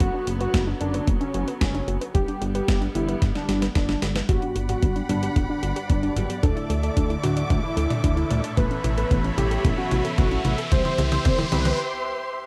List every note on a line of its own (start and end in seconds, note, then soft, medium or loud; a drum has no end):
0.00 0.10 F#1 medium
0.00 4.25 D3 medium
0.00 2.12 F#3 medium
0.00 2.11 B3 medium
0.00 0.06 B3 medium
0.00 0.27 F#4 loud
0.00 kick loud
0.00 closed hi-hat medium
0.14 0.19 D4 medium
0.27 0.47 F#1 medium
0.27 0.36 F#4 medium
0.27 closed hi-hat medium
0.41 0.68 F#4 loud
0.41 0.50 B4 medium
0.41 closed hi-hat medium
0.54 0.74 F#1 medium
0.54 0.59 B3 medium
0.54 kick loud
0.54 snare loud
0.54 closed hi-hat medium
0.67 0.73 D4 medium
0.80 1.01 F#1 loud
0.80 1.08 D4 loud
0.80 0.90 F#4 medium
0.80 closed hi-hat medium
0.94 1.03 B4 medium
0.94 closed hi-hat medium
1.07 1.18 F#1 loud
1.07 1.13 B3 medium
1.07 kick loud
1.07 closed hi-hat medium
1.21 1.48 C#4 medium
1.21 1.26 D4 medium
1.21 closed hi-hat soft
1.34 1.44 F#1 medium
1.34 1.43 F#4 medium
1.34 closed hi-hat medium
1.48 1.57 B4 medium
1.48 closed hi-hat medium
1.61 1.81 F#1 medium
1.61 1.66 B3 medium
1.61 1.97 C#4 medium
1.61 kick loud
1.61 snare loud
1.61 closed hi-hat medium
1.74 1.80 D4 medium
1.74 closed hi-hat soft
1.88 1.98 F#1 medium
1.88 1.97 F#4 medium
1.88 closed hi-hat medium
2.01 2.10 B4 medium
2.01 closed hi-hat medium
2.14 2.25 G1 loud
2.14 4.27 G3 medium
2.14 4.27 B3 medium
2.14 2.20 B3 medium
2.14 2.41 G4 loud
2.14 kick loud
2.14 closed hi-hat medium
2.28 2.33 D4 medium
2.28 closed hi-hat soft
2.41 2.61 G1 medium
2.41 2.50 G4 medium
2.41 closed hi-hat medium
2.55 2.82 G4 medium
2.55 2.64 B4 medium
2.55 closed hi-hat medium
2.68 2.88 G1 medium
2.68 2.74 B3 medium
2.68 kick loud
2.68 snare loud
2.68 closed hi-hat medium
2.82 2.87 D4 medium
2.82 closed hi-hat soft
2.95 3.15 G1 loud
2.95 3.22 E4 medium
2.95 3.04 G4 medium
2.95 closed hi-hat medium
3.08 3.17 B4 medium
3.08 closed hi-hat medium
3.22 3.32 G1 medium
3.22 3.27 B3 medium
3.22 kick loud
3.22 snare medium
3.22 closed hi-hat medium
3.35 3.62 D4 medium
3.35 3.41 D4 medium
3.35 snare medium
3.35 closed hi-hat soft
3.49 3.69 G1 medium
3.49 3.58 G4 medium
3.49 snare medium
3.49 closed hi-hat medium
3.62 3.71 B4 medium
3.62 snare medium
3.62 closed hi-hat medium
3.75 3.95 G1 loud
3.75 3.81 B3 medium
3.75 4.11 D4 medium
3.75 kick loud
3.75 snare medium
3.75 closed hi-hat medium
3.89 3.94 D4 medium
3.89 snare medium
3.89 closed hi-hat soft
4.02 4.22 G1 loud
4.02 4.11 G4 medium
4.02 snare medium
4.02 closed hi-hat medium
4.16 4.25 B4 medium
4.16 snare medium
4.16 closed hi-hat medium
4.29 4.39 G1 loud
4.29 4.66 G2 loud
4.29 4.34 B3 medium
4.29 4.66 B3 medium
4.29 4.66 D4 medium
4.29 4.56 F#4 loud
4.29 4.66 F#4 medium
4.29 4.66 G4 loud
4.29 8.54 D5 medium
4.29 6.41 F#5 medium
4.29 6.41 B5 medium
4.29 kick loud
4.29 closed hi-hat medium
4.29 mid tom soft
4.29 riser medium
4.42 4.48 D4 medium
4.42 closed hi-hat soft
4.56 4.76 G1 medium
4.56 4.65 F#4 medium
4.56 closed hi-hat medium
4.69 4.93 G2 medium
4.69 4.93 F#3 medium
4.69 4.93 B3 medium
4.69 4.93 D4 medium
4.69 4.96 F#4 medium
4.69 4.93 G4 medium
4.69 4.78 G4 medium
4.69 closed hi-hat medium
4.69 mid tom soft
4.82 5.03 G1 medium
4.82 4.88 B3 medium
4.82 kick loud
4.82 closed hi-hat medium
4.96 5.33 G2 medium
4.96 5.33 B3 medium
4.96 5.01 D4 medium
4.96 5.33 D4 medium
4.96 5.33 F#4 medium
4.96 5.33 G4 medium
4.96 closed hi-hat soft
5.09 5.29 G1 loud
5.09 5.36 D4 medium
5.09 5.18 F#4 medium
5.09 closed hi-hat medium
5.09 mid tom soft
5.23 5.32 G4 medium
5.23 closed hi-hat medium
5.36 5.46 G1 loud
5.36 5.73 G2 medium
5.36 5.73 B3 medium
5.36 5.41 B3 medium
5.36 5.73 D4 medium
5.36 5.73 F#4 medium
5.36 5.73 G4 medium
5.36 kick loud
5.36 closed hi-hat medium
5.36 mid tom soft
5.49 5.55 D4 medium
5.49 5.76 D4 loud
5.63 5.73 G1 medium
5.63 5.72 F#4 medium
5.63 closed hi-hat medium
5.76 6.13 G2 medium
5.76 6.13 B3 medium
5.76 6.13 D4 medium
5.76 6.13 F#4 medium
5.76 5.85 G4 medium
5.76 6.13 G4 medium
5.76 closed hi-hat medium
5.89 6.10 G1 medium
5.89 5.95 B3 medium
5.89 6.26 D4 loud
5.89 kick loud
5.89 closed hi-hat medium
6.03 6.08 D4 medium
6.03 closed hi-hat soft
6.16 6.26 G1 medium
6.16 6.38 F#3 medium
6.16 6.38 B3 medium
6.16 6.38 D4 medium
6.16 6.25 F#4 medium
6.16 6.38 G4 loud
6.16 closed hi-hat medium
6.16 mid tom medium
6.30 6.39 G4 medium
6.30 closed hi-hat medium
6.43 6.53 D2 medium
6.43 6.80 D3 loud
6.43 6.80 A3 medium
6.43 6.48 D4 medium
6.43 6.80 D4 medium
6.43 6.80 E4 medium
6.43 6.70 A4 loud
6.43 10.68 A4 medium
6.43 6.80 D5 loud
6.43 12.46 E5 medium
6.43 8.55 D6 medium
6.43 kick loud
6.43 closed hi-hat medium
6.43 mid tom medium
6.56 6.62 E4 medium
6.56 closed hi-hat soft
6.70 6.90 D2 medium
6.70 6.79 A4 medium
6.70 closed hi-hat medium
6.83 7.07 D3 medium
6.83 7.07 A3 medium
6.83 7.07 D4 medium
6.83 7.07 E4 medium
6.83 7.10 A4 medium
6.83 6.92 D5 medium
6.83 7.07 D5 loud
6.83 closed hi-hat medium
6.97 7.17 D2 medium
6.97 7.02 D4 medium
6.97 kick loud
6.97 closed hi-hat medium
7.10 7.47 D3 medium
7.10 7.47 A3 medium
7.10 7.47 D4 medium
7.10 7.15 E4 medium
7.10 7.47 E4 medium
7.10 7.47 D5 loud
7.10 closed hi-hat soft
7.23 7.44 D2 loud
7.23 7.50 F#4 medium
7.23 7.32 A4 medium
7.23 closed hi-hat medium
7.23 mid tom medium
7.37 7.46 D5 medium
7.37 closed hi-hat medium
7.50 7.60 D2 loud
7.50 7.87 D3 medium
7.50 7.87 A3 medium
7.50 7.56 D4 medium
7.50 7.87 D4 medium
7.50 7.87 E4 medium
7.50 7.87 D5 medium
7.50 kick loud
7.50 closed hi-hat medium
7.50 mid tom medium
7.63 7.69 E4 medium
7.63 7.91 E4 loud
7.77 7.87 D2 medium
7.77 7.86 A4 medium
7.77 closed hi-hat medium
7.90 8.27 D3 medium
7.90 8.27 A3 medium
7.90 8.27 D4 medium
7.90 8.27 E4 medium
7.90 7.99 D5 medium
7.90 8.27 D5 medium
7.90 closed hi-hat soft
7.90 mid tom medium
8.04 8.24 D2 medium
8.04 8.09 D4 medium
8.04 8.40 E4 medium
8.04 kick loud
8.04 closed hi-hat medium
8.17 8.22 E4 medium
8.17 closed hi-hat soft
8.30 8.41 D2 medium
8.30 8.52 A2 loud
8.30 8.52 A3 medium
8.30 8.52 D4 medium
8.30 8.52 E4 medium
8.30 8.40 A4 medium
8.30 8.52 D5 loud
8.30 closed hi-hat medium
8.30 mid tom medium
8.44 8.53 D5 medium
8.44 closed hi-hat medium
8.57 8.68 A1 loud
8.57 8.94 A2 loud
8.57 8.94 E3 medium
8.57 8.63 B3 medium
8.57 8.94 B3 medium
8.57 8.94 C#4 medium
8.57 8.94 A4 loud
8.57 8.84 B4 loud
8.57 10.69 C#5 medium
8.57 10.69 B5 medium
8.57 kick loud
8.57 closed hi-hat medium
8.57 mid tom medium
8.71 8.76 C#4 medium
8.71 closed hi-hat soft
8.84 9.04 A1 medium
8.84 8.93 E4 medium
8.84 closed hi-hat medium
8.84 mid tom medium
8.97 9.21 A2 medium
8.97 9.21 E3 medium
8.97 9.21 B3 medium
8.97 9.21 C#4 medium
8.97 9.21 A4 loud
8.97 9.07 A4 medium
8.97 9.25 B4 medium
8.97 closed hi-hat soft
9.11 9.31 A1 medium
9.11 9.16 B3 medium
9.11 kick loud
9.11 closed hi-hat medium
9.11 mid tom medium
9.24 9.61 A2 medium
9.24 9.61 E3 medium
9.24 9.61 B3 medium
9.24 9.30 C#4 medium
9.24 9.61 C#4 medium
9.24 9.61 A4 loud
9.24 closed hi-hat soft
9.38 9.58 A1 loud
9.38 9.47 E4 medium
9.38 9.65 G4 medium
9.38 closed hi-hat medium
9.38 mid tom medium
9.51 9.60 A4 medium
9.51 closed hi-hat soft
9.64 9.75 A1 loud
9.64 10.02 A2 medium
9.64 10.02 E3 medium
9.64 9.70 B3 medium
9.64 10.02 B3 medium
9.64 10.02 C#4 medium
9.64 10.02 A4 medium
9.64 kick loud
9.64 closed hi-hat medium
9.64 mid tom medium
9.78 9.83 C#4 medium
9.78 10.05 F#4 medium
9.91 10.01 A1 medium
9.91 10.00 E4 medium
9.91 closed hi-hat medium
9.91 mid tom medium
10.05 10.42 A2 medium
10.05 10.42 E3 medium
10.05 10.42 B3 medium
10.05 10.42 C#4 medium
10.05 10.14 A4 medium
10.05 10.42 A4 medium
10.05 closed hi-hat soft
10.18 10.38 A1 medium
10.18 10.24 B3 medium
10.18 10.54 F#4 loud
10.18 kick loud
10.18 closed hi-hat medium
10.18 mid tom medium
10.31 10.37 C#4 medium
10.31 closed hi-hat soft
10.45 10.55 A1 medium
10.45 10.66 E3 loud
10.45 10.66 B3 medium
10.45 10.66 C#4 medium
10.45 10.54 E4 medium
10.45 10.66 A4 loud
10.45 closed hi-hat medium
10.45 mid tom medium
10.58 10.67 A4 medium
10.58 closed hi-hat medium
10.71 10.82 C2 loud
10.71 11.09 E3 loud
10.71 11.09 G3 medium
10.71 11.09 C4 medium
10.71 10.77 C4 medium
10.71 12.46 G4 medium
10.71 11.09 G4 loud
10.71 12.46 C5 medium
10.71 10.99 C5 loud
10.71 12.46 C6 medium
10.71 kick loud
10.71 closed hi-hat medium
10.71 mid tom medium
10.85 10.91 E4 medium
10.85 closed hi-hat soft
10.85 mid tom medium
10.98 11.19 C2 medium
10.98 11.08 G4 medium
10.98 closed hi-hat medium
10.98 mid tom medium
11.12 11.35 E3 medium
11.12 11.35 G3 medium
11.12 11.36 C4 medium
11.12 11.35 G4 medium
11.12 11.39 C5 loud
11.12 11.21 C5 medium
11.12 closed hi-hat soft
11.12 mid tom medium
11.25 11.45 C2 medium
11.25 11.31 C4 medium
11.25 kick loud
11.25 closed hi-hat medium
11.25 mid tom loud
11.39 11.76 E3 medium
11.39 11.76 G3 medium
11.39 11.76 C4 medium
11.39 11.44 E4 medium
11.39 11.76 G4 loud
11.39 closed hi-hat soft
11.39 mid tom medium
11.52 11.72 C2 loud
11.52 11.61 G4 medium
11.52 11.79 B4 loud
11.52 closed hi-hat medium
11.52 mid tom loud
11.65 11.75 C5 medium
11.65 closed hi-hat medium
11.65 mid tom medium